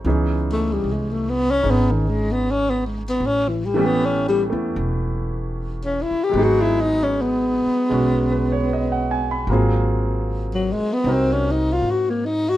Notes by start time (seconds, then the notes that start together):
0.04 C#2 E3 B3 C#4 D#4 G#4
0.52 A3
0.73 G3
0.84 C2
0.93 G#3
1.11 A3
1.29 B3
1.51 C#4
1.61 G#1 C#4 D#4 G#4
1.71 B3
1.92 D#3
2.09 G#3
2.32 B3
2.51 C#4
2.70 B3
2.86 G#3
3.08 B3
3.20 A1
3.27 C#4
3.48 E3
3.65 G3
3.74 E3 A3 B3 C#4
3.79 G4
3.86 B3
4.06 C#4
4.29 G3
4.50 E2 A3 B3 E4
4.76 E1
5.85 C#4
6.02 E4
6.11 muted upright bass stroke
6.24 G4
6.29 F#3 G#3
6.33 G#1 B3
6.38 D#4 G#4
6.43 F#4
6.61 E4
6.81 D#4
7.03 C#4
7.21 B3
7.66 muted upright bass stroke
7.90 B1 G#3 C#4 F#4
8.31 B4
8.52 C#5
8.73 D#5
8.92 F#5
9.11 G#5
9.31 B5
9.47 G#1 F#3 A#3
9.52 C4 F4 G#4
10.54 F#3
10.72 G#3
10.80 muted upright bass stroke
10.93 B3
11.04 C2 C4 D#4 F#4
11.09 A#4
11.13 C4
11.33 C#4
11.51 D#4
11.72 F4
11.82 G#2
11.91 F#4
12.10 A#3
12.26 D#4
12.49 F#4